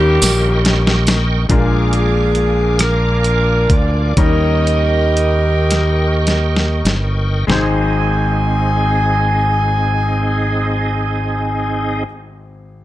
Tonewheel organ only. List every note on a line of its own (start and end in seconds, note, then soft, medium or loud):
0.00 1.45 A#4 medium
0.00 1.47 D#5 medium
0.00 1.47 G5 medium
0.00 1.47 C#6 medium
1.49 4.14 A#4 medium
1.49 4.14 F5 medium
1.49 4.14 G#5 medium
1.49 4.14 D6 medium
4.17 7.45 A#4 medium
4.17 7.45 D#5 soft
4.17 7.45 G5 soft
4.17 7.45 C#6 medium
7.48 12.04 C4 medium
7.48 12.04 D#4 soft
7.48 12.03 G#4 medium
7.48 12.03 D#5 medium